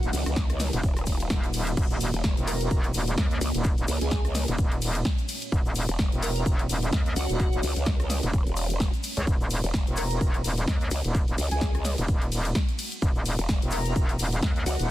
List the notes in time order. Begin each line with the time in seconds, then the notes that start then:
Already playing: A#3 D#4 F#4 A#4
0.03 D#1, closed hi-hat, shaker
0.13 C#2, open hi-hat, ride, shaker
0.26 C#2, cross-stick, closed hi-hat, shaker
0.36 kick, snare, shaker
0.49 cross-stick, closed hi-hat, shaker
0.60 snare, open hi-hat, ride, shaker
0.73 D#1, closed hi-hat, shaker
0.83 D#1, kick, ride, shaker
0.96 cross-stick, closed hi-hat, shaker
1.06 D#1, kick, open hi-hat, ride, shaker
1.20 closed hi-hat, shaker
1.30 D#1, kick, snare, ride, shaker
1.44 closed hi-hat, shaker
1.53 open hi-hat, ride, shaker
1.67 closed hi-hat, shaker
1.77 D#1 C#5, kick, crash, ride, shaker
1.90 shaker
2.01 open hi-hat, ride, shaker
2.14 E1, closed hi-hat, shaker
2.24 kick, snare, shaker
2.37 E1, closed hi-hat, shaker
2.47 A#4, open hi-hat, ride, shaker
2.61 closed hi-hat, shaker
2.71 E1, kick, ride, shaker
2.83 closed hi-hat, shaker
2.94 D#1, open hi-hat, ride, shaker
3.07 closed hi-hat, shaker
3.18 D#2, kick, snare, ride, shaker
3.31 closed hi-hat, shaker
3.41 C#2, open hi-hat, ride, shaker
3.54 D#1, closed hi-hat, shaker
3.64 kick, ride, shaker
3.78 D#1, closed hi-hat, shaker
3.88 C#2, open hi-hat, ride, shaker
4.01 C#2 G#4, closed hi-hat, shaker
4.11 G#4, kick, snare, ride, shaker
4.25 cross-stick, closed hi-hat, shaker
4.35 snare, open hi-hat, ride, shaker
4.48 D#1, closed hi-hat, shaker
4.58 D#1, kick, ride, shaker
4.72 closed hi-hat, shaker
4.82 open hi-hat, ride, shaker
4.95 closed hi-hat, shaker
5.05 kick, snare, shaker
5.18 closed hi-hat, shaker
5.29 open hi-hat, ride, shaker
5.42 closed hi-hat, shaker
5.52 D#1, kick, ride, shaker
5.65 shaker
5.75 open hi-hat, ride, shaker
5.89 E1, closed hi-hat, shaker
5.99 kick, snare, ride, shaker
6.12 E1, closed hi-hat, shaker
6.23 A#4, open hi-hat, ride, shaker
6.36 closed hi-hat, shaker
6.46 E1, kick, ride, shaker
6.59 closed hi-hat, shaker
6.69 D#1, open hi-hat, ride, shaker
6.83 closed hi-hat, shaker
6.93 D#2, kick, snare, ride, shaker
7.06 closed hi-hat, shaker
7.16 C#2 F#4, open hi-hat, ride, shaker
7.29 D#1, closed hi-hat, shaker
7.40 kick, ride, shaker
7.52 D#1, closed hi-hat, shaker
7.63 C#2, open hi-hat, ride, shaker
7.76 C#2, closed hi-hat, shaker
7.86 kick, snare, ride, shaker
8.00 cross-stick, closed hi-hat, shaker
8.10 snare, open hi-hat, ride, shaker
8.23 D#1, closed hi-hat, shaker
8.33 E1, kick, ride, shaker
8.47 E1, closed hi-hat, shaker
8.57 open hi-hat, ride, shaker
8.70 closed hi-hat, shaker
8.80 kick, snare, ride, shaker
8.94 closed hi-hat, shaker
9.04 open hi-hat, ride, shaker
9.17 C#2, closed hi-hat, shaker
9.27 D#1 F#5, kick, ride, shaker
9.41 shaker
9.50 open hi-hat, ride, shaker
9.64 E1, closed hi-hat, shaker
9.74 kick, snare, ride, shaker
9.87 E1, closed hi-hat, shaker
9.97 A#4, open hi-hat, ride, shaker
10.11 closed hi-hat, shaker
10.21 E1, kick, ride, shaker
10.34 closed hi-hat, shaker
10.44 D#1, open hi-hat, ride, shaker
10.57 closed hi-hat, shaker
10.68 D#2, kick, snare, ride, shaker
10.81 closed hi-hat, shaker
10.91 C#2, open hi-hat, ride, shaker
11.04 D#1, closed hi-hat, shaker
11.15 kick, ride, shaker
11.28 D#1, closed hi-hat, shaker
11.38 C#2, open hi-hat, ride, shaker
11.51 C#2 G#4, closed hi-hat, shaker
11.61 G#4, kick, snare, ride, shaker
11.74 cross-stick, closed hi-hat, shaker
11.85 snare, open hi-hat, ride, shaker
11.98 D#1, closed hi-hat, shaker
12.08 D#1, kick, ride, shaker
12.22 closed hi-hat, shaker
12.32 open hi-hat, ride, shaker
12.45 closed hi-hat, shaker
12.55 kick, snare, ride, shaker
12.68 closed hi-hat, shaker
12.79 open hi-hat, ride, shaker
12.92 closed hi-hat, shaker
13.02 D#1, kick, ride, shaker
13.15 shaker
13.26 open hi-hat, ride, shaker
13.39 E1, closed hi-hat, shaker
13.49 kick, snare, ride, shaker
13.62 E1, closed hi-hat, shaker
13.71 A#4, open hi-hat, ride, shaker
13.85 closed hi-hat, shaker
13.96 E1, kick, ride, shaker
14.09 closed hi-hat, shaker
14.19 D#1, open hi-hat, ride, shaker
14.33 closed hi-hat, shaker
14.42 D#2, kick, snare, ride, shaker
14.56 closed hi-hat, shaker
14.66 C#2 F#4, open hi-hat, ride, shaker
14.79 D#1, closed hi-hat, shaker